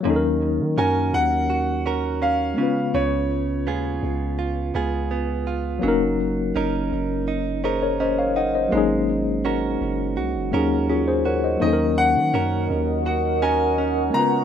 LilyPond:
<<
  \new Staff \with { instrumentName = "Grand piano" } { \time 4/4 \key ees \minor \tempo 4 = 83 r4 aes''8 ges''4. f''4 | des''2. r4 | r1 | r1 |
ees''8 ges''4 r8 ges''8 aes''4 bes''8 | }
  \new Staff \with { instrumentName = "Ambient pad" } { \time 4/4 \key ees \minor << { r1 | r1 | r1 | r1 |
des'''1 | } \\ { r1 | r1 | r1 | r1 |
<bes' ees'' ges''>2.~ <bes' ees'' ges''>8 <ces'' f'' aes''>8 | } >> }
  \new Staff \with { instrumentName = "Tine electric piano" } { \time 4/4 \key ees \minor << { r1 | r1 | r2 r8 <aes' c''>16 <bes' des''>16 <c'' ees''>16 <des'' f''>16 <ees'' ges''>16 <c'' ees''>16~ | <c'' ees''>16 r2 r8. <f' aes'>16 <aes' c''>16 <bes' des''>16 <c'' ees''>16~ |
<c'' ees''>16 r2. r8. | } \\ { <ges bes des' ees' a' bes'>2.~ <ges bes des' ees' a' bes'>8 <aes ces' des' f' ces''>8~ | <aes ces' des' f' ces''>2.~ <aes ces' des' f' ces''>8 r8 | <ges bes des' ees' bes'>2~ <ges bes des' ees' bes'>8 r4. | <ges bes des' ees' aes'>2~ <ges bes des' ees' aes'>8 <ges bes des' ees' aes'>4. |
<ges bes des' ees' a' bes'>2.~ <ges bes des' ees' a' bes'>8 <aes ces' des' f' ces''>8 | } >> }
  \new Staff \with { instrumentName = "Clean electric guitar" } { \time 4/4 \key ees \minor ees4 <des' ges' bes'>4 ges'8 <des' ges' bes'>8 des'8 des8 | des4 <ces' f' aes'>4 f'8 <ces' f' aes'>8 ces'8 f'8 | ges4 <des' ees' bes'>4 ees'8 <des' ees' bes'>8 des'8 ees'8 | aes4 <des' ges' bes'>4 ges'8 <des' ges' bes'>8 des'8 ges'8 |
ees4 <des' ges' bes'>4 ges'8 <des' ges' bes'>8 des'8 des8 | }
  \new Staff \with { instrumentName = "808-style bass" } { \clef bass \time 4/4 \key ees \minor ees,8. ees16 ges,8 ees,2 r8 | des,4 ees,8 des,4 des,4. | ges,,4 ges,,8 ges,,2~ ges,,8 | aes,,4. ges,,8 c,16 ges,,16 ees,4. |
ees,8. ees16 ges,8 ees,2 r8 | }
>>